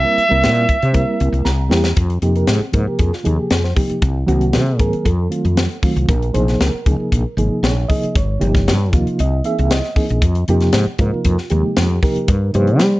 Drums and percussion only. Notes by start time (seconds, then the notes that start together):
0.18 closed hi-hat
0.44 snare, closed hi-hat
0.69 kick, closed hi-hat
0.82 closed hi-hat
0.94 kick, closed hi-hat
1.20 closed hi-hat
1.34 closed hi-hat
1.45 snare
1.71 snare
1.84 snare
1.97 kick, closed hi-hat
2.10 closed hi-hat
2.22 closed hi-hat
2.36 closed hi-hat
2.47 snare, closed hi-hat
2.73 kick, closed hi-hat
2.99 kick, closed hi-hat
3.13 snare
3.25 closed hi-hat
3.51 snare, closed hi-hat
3.64 snare
3.76 kick, open hi-hat
3.90 closed hi-hat
4.02 kick, closed hi-hat
4.28 closed hi-hat
4.41 closed hi-hat
4.53 snare, closed hi-hat
4.79 kick, closed hi-hat
4.93 closed hi-hat
5.06 kick, closed hi-hat
5.32 closed hi-hat
5.45 closed hi-hat
5.57 snare, closed hi-hat
5.71 closed hi-hat
5.83 kick, open hi-hat
5.97 closed hi-hat
6.09 kick, closed hi-hat
6.22 closed hi-hat
6.35 closed hi-hat
6.48 snare, closed hi-hat
6.61 snare, closed hi-hat
6.86 kick, closed hi-hat
7.12 kick, closed hi-hat
7.38 closed hi-hat
7.64 snare, closed hi-hat
7.90 kick, open hi-hat
8.03 closed hi-hat
8.16 kick, closed hi-hat
8.41 closed hi-hat
8.55 kick, snare, closed hi-hat
8.68 snare, closed hi-hat
8.93 kick, closed hi-hat
9.07 closed hi-hat
9.19 closed hi-hat
9.44 closed hi-hat
9.59 closed hi-hat
9.71 snare, closed hi-hat
9.84 snare, closed hi-hat
9.96 kick, open hi-hat
10.09 closed hi-hat
10.22 kick, closed hi-hat
10.35 closed hi-hat
10.48 closed hi-hat
10.60 snare, closed hi-hat
10.73 snare, closed hi-hat
10.99 kick, closed hi-hat
11.25 kick, closed hi-hat
11.38 snare
11.50 closed hi-hat
11.77 snare, closed hi-hat
12.03 kick, open hi-hat
12.16 closed hi-hat
12.28 kick, closed hi-hat
12.54 closed hi-hat
12.67 closed hi-hat
12.79 snare, closed hi-hat